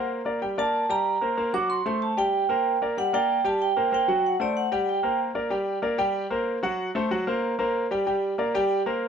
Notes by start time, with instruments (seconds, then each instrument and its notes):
Already playing: grand piano A#3 A#4 C5
0.25 grand piano A#3 A#4 D5
0.42 grand piano G3 G4 G5
0.58 grand piano A#3 A#4 D5, vibraphone A5
0.89 grand piano G3 G4 G5, vibraphone A#5
1.21 grand piano A#3 A#4 C5
1.37 grand piano A#3 A#4 C5
1.53 grand piano F#3 F#4 F#5, vibraphone D6
1.70 vibraphone C6
1.86 grand piano A3 A4 C5, vibraphone C6
2.02 vibraphone A5
2.17 grand piano G3 G4 G5, vibraphone G5
2.49 grand piano A#3 A#4 C5
2.82 grand piano A#3 A#4 D5
2.97 grand piano G3 G4 G5, vibraphone F#5
3.13 grand piano A#3 A#4 D5, vibraphone G5
3.44 grand piano G3 G4 G5, vibraphone A5
3.62 vibraphone G5
3.76 grand piano A#3 A#4 C5
3.92 grand piano A#3 A#4 C5, vibraphone G5
4.08 grand piano F#3 F#4 F#5
4.26 vibraphone F#5
4.40 grand piano A3 A4 C5, vibraphone D5
4.57 vibraphone F#5
4.72 grand piano G3 G4 G5
4.89 vibraphone G5
5.03 grand piano A#3 A#4 C5
5.35 grand piano A#3 A#4 D5
5.50 grand piano G3 G4 G5
5.82 grand piano A#3 A#4 D5
5.98 grand piano G3 G4 G5
6.30 grand piano A#3 A#4 C5
6.63 grand piano F#3 F#4 F#5
6.95 grand piano A3 A4 C5
7.11 grand piano F#3 F#4 F#5
7.27 grand piano A#3 A#4 C5
7.59 grand piano A#3 A#4 C5
7.91 grand piano G3 G4 G5
8.07 grand piano G3 G4 G5
8.38 grand piano A#3 A#4 D5
8.54 grand piano G3 G4 G5
8.86 grand piano A#3 A#4 C5